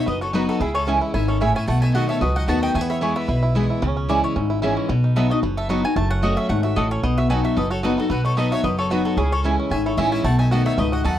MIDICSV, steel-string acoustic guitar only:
0, 0, Header, 1, 2, 480
1, 0, Start_track
1, 0, Tempo, 267618
1, 1098, Time_signature, 4, 2, 24, 8
1, 20069, End_track
2, 0, Start_track
2, 0, Title_t, "Steel-string acoustic guitar"
2, 0, Program_c, 0, 25
2, 130, Note_on_c, 0, 42, 87
2, 596, Note_on_c, 0, 54, 96
2, 609, Note_on_c, 0, 59, 98
2, 620, Note_on_c, 0, 63, 109
2, 628, Note_on_c, 0, 66, 110
2, 1050, Note_off_c, 0, 42, 0
2, 1065, Note_off_c, 0, 54, 0
2, 1072, Note_off_c, 0, 59, 0
2, 1077, Note_off_c, 0, 63, 0
2, 1081, Note_off_c, 0, 66, 0
2, 1084, Note_on_c, 0, 49, 98
2, 1557, Note_on_c, 0, 52, 80
2, 1567, Note_on_c, 0, 56, 83
2, 1577, Note_on_c, 0, 61, 88
2, 1590, Note_on_c, 0, 64, 90
2, 2007, Note_off_c, 0, 49, 0
2, 2026, Note_off_c, 0, 52, 0
2, 2031, Note_off_c, 0, 56, 0
2, 2036, Note_off_c, 0, 61, 0
2, 2042, Note_off_c, 0, 64, 0
2, 2044, Note_on_c, 0, 51, 92
2, 2510, Note_off_c, 0, 51, 0
2, 2541, Note_on_c, 0, 45, 103
2, 2998, Note_off_c, 0, 45, 0
2, 3016, Note_on_c, 0, 47, 96
2, 3480, Note_on_c, 0, 51, 77
2, 3492, Note_on_c, 0, 57, 83
2, 3505, Note_on_c, 0, 59, 84
2, 3513, Note_on_c, 0, 66, 96
2, 3934, Note_off_c, 0, 47, 0
2, 3948, Note_off_c, 0, 51, 0
2, 3954, Note_off_c, 0, 57, 0
2, 3960, Note_off_c, 0, 59, 0
2, 3964, Note_off_c, 0, 66, 0
2, 3966, Note_on_c, 0, 42, 85
2, 4443, Note_on_c, 0, 51, 88
2, 4456, Note_on_c, 0, 57, 96
2, 4469, Note_on_c, 0, 59, 103
2, 4477, Note_on_c, 0, 66, 107
2, 4889, Note_off_c, 0, 42, 0
2, 4910, Note_off_c, 0, 51, 0
2, 4916, Note_off_c, 0, 57, 0
2, 4923, Note_off_c, 0, 59, 0
2, 4927, Note_off_c, 0, 66, 0
2, 4936, Note_on_c, 0, 40, 90
2, 5402, Note_on_c, 0, 52, 87
2, 5413, Note_on_c, 0, 56, 85
2, 5426, Note_on_c, 0, 59, 92
2, 5438, Note_on_c, 0, 64, 101
2, 5854, Note_off_c, 0, 40, 0
2, 5869, Note_off_c, 0, 52, 0
2, 5875, Note_off_c, 0, 56, 0
2, 5881, Note_off_c, 0, 59, 0
2, 5887, Note_off_c, 0, 64, 0
2, 5898, Note_on_c, 0, 47, 88
2, 6367, Note_on_c, 0, 52, 85
2, 6379, Note_on_c, 0, 56, 96
2, 6389, Note_on_c, 0, 59, 100
2, 6397, Note_on_c, 0, 64, 113
2, 6816, Note_off_c, 0, 47, 0
2, 6831, Note_off_c, 0, 52, 0
2, 6838, Note_off_c, 0, 56, 0
2, 6843, Note_off_c, 0, 59, 0
2, 6847, Note_off_c, 0, 64, 0
2, 6853, Note_on_c, 0, 49, 97
2, 7329, Note_on_c, 0, 52, 77
2, 7344, Note_on_c, 0, 56, 79
2, 7356, Note_on_c, 0, 61, 85
2, 7367, Note_on_c, 0, 64, 86
2, 7773, Note_off_c, 0, 49, 0
2, 7793, Note_off_c, 0, 52, 0
2, 7801, Note_off_c, 0, 56, 0
2, 7806, Note_off_c, 0, 61, 0
2, 7812, Note_off_c, 0, 64, 0
2, 7818, Note_on_c, 0, 44, 89
2, 8291, Note_on_c, 0, 52, 96
2, 8306, Note_on_c, 0, 56, 95
2, 8310, Note_on_c, 0, 61, 112
2, 8328, Note_on_c, 0, 64, 96
2, 8736, Note_off_c, 0, 44, 0
2, 8754, Note_off_c, 0, 52, 0
2, 8761, Note_off_c, 0, 56, 0
2, 8764, Note_off_c, 0, 61, 0
2, 8772, Note_off_c, 0, 64, 0
2, 8782, Note_on_c, 0, 47, 101
2, 9260, Note_on_c, 0, 54, 88
2, 9273, Note_on_c, 0, 59, 89
2, 9284, Note_on_c, 0, 63, 84
2, 9295, Note_on_c, 0, 66, 97
2, 9501, Note_off_c, 0, 66, 0
2, 9509, Note_off_c, 0, 54, 0
2, 9516, Note_off_c, 0, 59, 0
2, 9521, Note_off_c, 0, 63, 0
2, 9523, Note_on_c, 0, 66, 62
2, 9553, Note_on_c, 0, 63, 56
2, 9697, Note_off_c, 0, 47, 0
2, 9734, Note_off_c, 0, 66, 0
2, 9748, Note_off_c, 0, 63, 0
2, 9748, Note_on_c, 0, 42, 94
2, 10206, Note_on_c, 0, 54, 98
2, 10220, Note_on_c, 0, 59, 98
2, 10227, Note_on_c, 0, 63, 101
2, 10245, Note_on_c, 0, 66, 108
2, 10450, Note_off_c, 0, 66, 0
2, 10462, Note_off_c, 0, 54, 0
2, 10469, Note_off_c, 0, 59, 0
2, 10472, Note_on_c, 0, 66, 59
2, 10473, Note_off_c, 0, 63, 0
2, 10509, Note_on_c, 0, 63, 51
2, 10660, Note_off_c, 0, 42, 0
2, 10688, Note_off_c, 0, 66, 0
2, 10694, Note_on_c, 0, 42, 98
2, 10706, Note_off_c, 0, 63, 0
2, 11162, Note_on_c, 0, 54, 86
2, 11173, Note_on_c, 0, 57, 88
2, 11191, Note_on_c, 0, 61, 90
2, 11198, Note_on_c, 0, 66, 92
2, 11614, Note_off_c, 0, 42, 0
2, 11630, Note_off_c, 0, 54, 0
2, 11635, Note_off_c, 0, 57, 0
2, 11644, Note_off_c, 0, 61, 0
2, 11647, Note_off_c, 0, 66, 0
2, 11657, Note_on_c, 0, 44, 92
2, 12117, Note_off_c, 0, 44, 0
2, 12132, Note_on_c, 0, 45, 98
2, 12594, Note_off_c, 0, 45, 0
2, 12618, Note_on_c, 0, 47, 97
2, 13089, Note_on_c, 0, 54, 76
2, 13106, Note_on_c, 0, 59, 81
2, 13116, Note_on_c, 0, 63, 100
2, 13121, Note_on_c, 0, 66, 98
2, 13535, Note_off_c, 0, 47, 0
2, 13553, Note_off_c, 0, 54, 0
2, 13561, Note_off_c, 0, 59, 0
2, 13566, Note_off_c, 0, 63, 0
2, 13569, Note_off_c, 0, 66, 0
2, 13577, Note_on_c, 0, 42, 91
2, 14049, Note_on_c, 0, 54, 91
2, 14065, Note_on_c, 0, 59, 97
2, 14075, Note_on_c, 0, 63, 97
2, 14084, Note_on_c, 0, 66, 97
2, 14290, Note_off_c, 0, 66, 0
2, 14303, Note_off_c, 0, 54, 0
2, 14311, Note_on_c, 0, 66, 65
2, 14312, Note_off_c, 0, 59, 0
2, 14317, Note_off_c, 0, 63, 0
2, 14346, Note_on_c, 0, 63, 50
2, 14495, Note_off_c, 0, 42, 0
2, 14527, Note_off_c, 0, 66, 0
2, 14545, Note_off_c, 0, 63, 0
2, 14545, Note_on_c, 0, 47, 96
2, 15009, Note_on_c, 0, 54, 77
2, 15022, Note_on_c, 0, 59, 89
2, 15030, Note_on_c, 0, 63, 91
2, 15044, Note_on_c, 0, 66, 89
2, 15459, Note_off_c, 0, 47, 0
2, 15473, Note_off_c, 0, 54, 0
2, 15479, Note_off_c, 0, 59, 0
2, 15483, Note_off_c, 0, 63, 0
2, 15490, Note_off_c, 0, 66, 0
2, 15498, Note_on_c, 0, 42, 95
2, 15965, Note_on_c, 0, 54, 91
2, 15983, Note_on_c, 0, 59, 108
2, 15992, Note_on_c, 0, 63, 93
2, 16007, Note_on_c, 0, 66, 98
2, 16415, Note_off_c, 0, 42, 0
2, 16430, Note_off_c, 0, 54, 0
2, 16440, Note_off_c, 0, 59, 0
2, 16444, Note_off_c, 0, 63, 0
2, 16452, Note_off_c, 0, 66, 0
2, 16462, Note_on_c, 0, 49, 97
2, 16925, Note_on_c, 0, 52, 76
2, 16940, Note_on_c, 0, 56, 82
2, 16953, Note_on_c, 0, 61, 90
2, 16963, Note_on_c, 0, 64, 98
2, 17377, Note_off_c, 0, 49, 0
2, 17390, Note_off_c, 0, 52, 0
2, 17398, Note_off_c, 0, 56, 0
2, 17405, Note_off_c, 0, 61, 0
2, 17409, Note_off_c, 0, 64, 0
2, 17424, Note_on_c, 0, 44, 92
2, 17888, Note_on_c, 0, 52, 97
2, 17901, Note_on_c, 0, 56, 94
2, 17911, Note_on_c, 0, 61, 100
2, 17922, Note_on_c, 0, 64, 116
2, 18337, Note_off_c, 0, 44, 0
2, 18351, Note_off_c, 0, 52, 0
2, 18358, Note_off_c, 0, 56, 0
2, 18363, Note_off_c, 0, 61, 0
2, 18369, Note_off_c, 0, 64, 0
2, 18384, Note_on_c, 0, 47, 104
2, 18858, Note_on_c, 0, 51, 82
2, 18872, Note_on_c, 0, 57, 92
2, 18882, Note_on_c, 0, 59, 93
2, 18890, Note_on_c, 0, 66, 102
2, 19297, Note_off_c, 0, 47, 0
2, 19316, Note_off_c, 0, 51, 0
2, 19324, Note_off_c, 0, 57, 0
2, 19329, Note_off_c, 0, 59, 0
2, 19332, Note_off_c, 0, 66, 0
2, 19338, Note_on_c, 0, 44, 92
2, 19797, Note_off_c, 0, 44, 0
2, 19820, Note_on_c, 0, 42, 93
2, 20069, Note_off_c, 0, 42, 0
2, 20069, End_track
0, 0, End_of_file